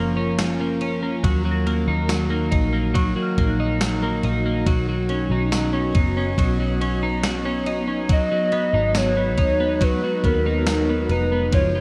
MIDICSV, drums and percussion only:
0, 0, Header, 1, 2, 480
1, 0, Start_track
1, 0, Tempo, 857143
1, 696, Time_signature, 4, 2, 24, 8
1, 6611, End_track
2, 0, Start_track
2, 0, Title_t, "Drums"
2, 215, Note_on_c, 9, 54, 67
2, 216, Note_on_c, 9, 38, 124
2, 217, Note_on_c, 9, 51, 65
2, 271, Note_off_c, 9, 54, 0
2, 272, Note_off_c, 9, 38, 0
2, 273, Note_off_c, 9, 51, 0
2, 453, Note_on_c, 9, 51, 47
2, 509, Note_off_c, 9, 51, 0
2, 695, Note_on_c, 9, 36, 126
2, 695, Note_on_c, 9, 51, 62
2, 751, Note_off_c, 9, 36, 0
2, 751, Note_off_c, 9, 51, 0
2, 934, Note_on_c, 9, 51, 43
2, 990, Note_off_c, 9, 51, 0
2, 1171, Note_on_c, 9, 38, 98
2, 1174, Note_on_c, 9, 54, 65
2, 1175, Note_on_c, 9, 51, 55
2, 1227, Note_off_c, 9, 38, 0
2, 1230, Note_off_c, 9, 54, 0
2, 1231, Note_off_c, 9, 51, 0
2, 1410, Note_on_c, 9, 51, 54
2, 1413, Note_on_c, 9, 36, 100
2, 1466, Note_off_c, 9, 51, 0
2, 1469, Note_off_c, 9, 36, 0
2, 1653, Note_on_c, 9, 36, 103
2, 1654, Note_on_c, 9, 51, 58
2, 1709, Note_off_c, 9, 36, 0
2, 1710, Note_off_c, 9, 51, 0
2, 1893, Note_on_c, 9, 36, 97
2, 1893, Note_on_c, 9, 51, 43
2, 1949, Note_off_c, 9, 36, 0
2, 1949, Note_off_c, 9, 51, 0
2, 2132, Note_on_c, 9, 54, 76
2, 2133, Note_on_c, 9, 38, 111
2, 2134, Note_on_c, 9, 51, 63
2, 2188, Note_off_c, 9, 54, 0
2, 2189, Note_off_c, 9, 38, 0
2, 2190, Note_off_c, 9, 51, 0
2, 2371, Note_on_c, 9, 51, 46
2, 2427, Note_off_c, 9, 51, 0
2, 2613, Note_on_c, 9, 36, 127
2, 2613, Note_on_c, 9, 51, 62
2, 2669, Note_off_c, 9, 36, 0
2, 2669, Note_off_c, 9, 51, 0
2, 2851, Note_on_c, 9, 51, 39
2, 2907, Note_off_c, 9, 51, 0
2, 3092, Note_on_c, 9, 38, 104
2, 3095, Note_on_c, 9, 54, 70
2, 3096, Note_on_c, 9, 51, 56
2, 3148, Note_off_c, 9, 38, 0
2, 3151, Note_off_c, 9, 54, 0
2, 3152, Note_off_c, 9, 51, 0
2, 3331, Note_on_c, 9, 51, 59
2, 3333, Note_on_c, 9, 36, 102
2, 3387, Note_off_c, 9, 51, 0
2, 3389, Note_off_c, 9, 36, 0
2, 3572, Note_on_c, 9, 36, 94
2, 3577, Note_on_c, 9, 51, 60
2, 3628, Note_off_c, 9, 36, 0
2, 3633, Note_off_c, 9, 51, 0
2, 3816, Note_on_c, 9, 51, 47
2, 3872, Note_off_c, 9, 51, 0
2, 4050, Note_on_c, 9, 54, 71
2, 4052, Note_on_c, 9, 38, 118
2, 4052, Note_on_c, 9, 51, 64
2, 4106, Note_off_c, 9, 54, 0
2, 4108, Note_off_c, 9, 38, 0
2, 4108, Note_off_c, 9, 51, 0
2, 4292, Note_on_c, 9, 51, 50
2, 4348, Note_off_c, 9, 51, 0
2, 4532, Note_on_c, 9, 51, 60
2, 4533, Note_on_c, 9, 36, 122
2, 4588, Note_off_c, 9, 51, 0
2, 4589, Note_off_c, 9, 36, 0
2, 4771, Note_on_c, 9, 51, 41
2, 4827, Note_off_c, 9, 51, 0
2, 5010, Note_on_c, 9, 38, 100
2, 5013, Note_on_c, 9, 54, 73
2, 5014, Note_on_c, 9, 51, 56
2, 5066, Note_off_c, 9, 38, 0
2, 5069, Note_off_c, 9, 54, 0
2, 5070, Note_off_c, 9, 51, 0
2, 5251, Note_on_c, 9, 51, 56
2, 5253, Note_on_c, 9, 36, 110
2, 5307, Note_off_c, 9, 51, 0
2, 5309, Note_off_c, 9, 36, 0
2, 5493, Note_on_c, 9, 36, 108
2, 5497, Note_on_c, 9, 51, 63
2, 5549, Note_off_c, 9, 36, 0
2, 5553, Note_off_c, 9, 51, 0
2, 5733, Note_on_c, 9, 36, 94
2, 5736, Note_on_c, 9, 51, 43
2, 5789, Note_off_c, 9, 36, 0
2, 5792, Note_off_c, 9, 51, 0
2, 5972, Note_on_c, 9, 54, 72
2, 5973, Note_on_c, 9, 38, 127
2, 5974, Note_on_c, 9, 51, 64
2, 6028, Note_off_c, 9, 54, 0
2, 6029, Note_off_c, 9, 38, 0
2, 6030, Note_off_c, 9, 51, 0
2, 6213, Note_on_c, 9, 51, 45
2, 6269, Note_off_c, 9, 51, 0
2, 6454, Note_on_c, 9, 36, 125
2, 6454, Note_on_c, 9, 51, 62
2, 6510, Note_off_c, 9, 36, 0
2, 6510, Note_off_c, 9, 51, 0
2, 6611, End_track
0, 0, End_of_file